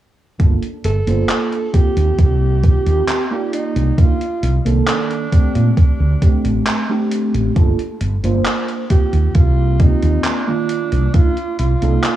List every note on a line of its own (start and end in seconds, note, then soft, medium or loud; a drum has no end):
0.39 0.54 G1 medium
0.39 0.63 A#3 medium
0.39 0.63 D4 medium
0.39 0.63 F4 medium
0.39 0.64 A4 loud
0.39 kick loud
0.39 closed hi-hat medium
0.62 closed hi-hat soft
0.84 0.99 G1 medium
0.84 1.76 A4 loud
0.84 closed hi-hat medium
1.07 1.21 G1 medium
1.07 1.69 A#3 medium
1.07 1.69 D4 medium
1.07 1.69 F4 medium
1.07 1.69 C5 loud
1.07 closed hi-hat medium
1.29 clap loud
1.29 closed hi-hat medium
1.53 closed hi-hat soft
1.73 2.58 A#3 medium
1.73 2.58 C4 medium
1.73 2.59 F4 medium
1.73 3.53 G4 loud
1.73 2.59 G4 medium
1.73 kick medium
1.73 closed hi-hat medium
1.97 2.11 D#2 medium
1.97 closed hi-hat medium
2.19 2.73 C2 medium
2.19 kick loud
2.19 closed hi-hat medium
2.63 3.26 A#3 medium
2.63 3.26 C4 medium
2.63 3.26 F4 medium
2.63 3.26 G4 medium
2.63 kick loud
2.63 closed hi-hat medium
2.86 3.00 D#2 medium
2.86 closed hi-hat medium
3.08 clap loud
3.08 closed hi-hat medium
3.31 3.92 A#3 medium
3.31 3.93 D#4 medium
3.31 3.93 F4 medium
3.31 3.93 D5 medium
3.53 3.99 D#4 medium
3.53 closed hi-hat medium
3.76 3.90 C2 medium
3.76 closed hi-hat medium
3.97 4.21 A#3 medium
3.97 4.21 D4 medium
3.97 4.22 D#4 medium
3.97 4.61 F4 medium
3.97 4.22 F4 loud
3.97 kick loud
3.97 closed hi-hat medium
4.21 closed hi-hat soft
4.43 4.57 C2 medium
4.43 closed hi-hat medium
4.65 4.79 C2 medium
4.65 5.27 D#3 medium
4.65 5.27 A#3 loud
4.65 5.27 D4 medium
4.65 5.28 A4 loud
4.65 closed hi-hat soft
4.87 5.73 D4 medium
4.87 clap loud
4.87 closed hi-hat medium
5.11 closed hi-hat soft
5.32 6.16 A3 medium
5.32 6.17 C4 medium
5.32 6.17 D4 medium
5.32 6.17 G4 medium
5.32 kick medium
5.32 closed hi-hat medium
5.55 5.69 A#2 medium
5.55 closed hi-hat medium
5.77 6.63 D4 medium
5.77 kick loud
5.77 closed hi-hat medium
6.00 6.14 D2 medium
6.21 6.84 A3 medium
6.21 6.84 C4 medium
6.21 6.84 D4 medium
6.21 6.85 G4 medium
6.21 kick medium
6.21 closed hi-hat medium
6.45 6.58 A1 medium
6.45 closed hi-hat medium
6.67 clap loud
6.67 closed hi-hat medium
6.89 7.51 A3 medium
6.89 7.51 C4 medium
6.89 7.51 D4 medium
6.89 7.51 G4 loud
7.11 closed hi-hat medium
7.34 7.48 A1 medium
7.34 closed hi-hat soft
7.55 7.70 G1 loud
7.55 7.79 A#3 loud
7.55 7.79 D4 medium
7.55 7.80 F4 medium
7.55 7.80 A4 loud
7.55 kick loud
7.55 closed hi-hat medium
7.79 closed hi-hat soft
8.01 8.15 G1 medium
8.01 closed hi-hat medium
8.23 8.37 G1 medium
8.23 8.85 A#3 medium
8.23 8.85 D4 medium
8.23 8.86 F4 medium
8.23 8.86 C5 loud
8.23 closed hi-hat medium
8.46 clap loud
8.46 closed hi-hat medium
8.68 closed hi-hat soft
8.90 9.75 A#3 medium
8.90 9.75 C4 medium
8.90 9.75 F4 medium
8.90 9.37 G4 loud
8.90 9.75 G4 medium
8.90 kick medium
8.90 closed hi-hat medium
9.13 9.27 D#2 medium
9.13 closed hi-hat soft
9.35 9.89 C2 medium
9.35 9.82 F4 loud
9.35 kick loud
9.35 closed hi-hat medium
9.79 10.42 A#3 medium
9.79 10.42 C4 medium
9.79 10.27 D#4 medium
9.79 10.42 F4 medium
9.79 10.43 G4 medium
9.79 kick loud
9.79 closed hi-hat medium
10.03 10.17 D#2 medium
10.03 closed hi-hat medium
10.24 11.16 D4 loud
10.24 clap loud
10.24 closed hi-hat medium
10.47 11.10 D#3 medium
10.47 11.09 A#3 medium
10.47 11.09 D4 medium
10.47 11.10 F4 loud
10.69 closed hi-hat medium
10.92 11.06 C2 loud
10.92 closed hi-hat medium
11.14 11.37 A#3 medium
11.14 11.38 D4 medium
11.14 11.38 D#4 medium
11.14 11.58 F4 loud
11.14 11.38 F4 loud
11.14 kick loud
11.14 closed hi-hat medium
11.37 closed hi-hat soft
11.59 11.73 C2 medium
11.59 12.16 F4 medium
11.59 closed hi-hat medium
11.82 11.96 C2 medium
11.82 12.16 A#3 medium
11.82 12.16 D4 medium
11.82 12.16 D#4 medium
11.82 12.16 A4 loud
11.82 closed hi-hat soft
12.04 clap loud
12.04 closed hi-hat medium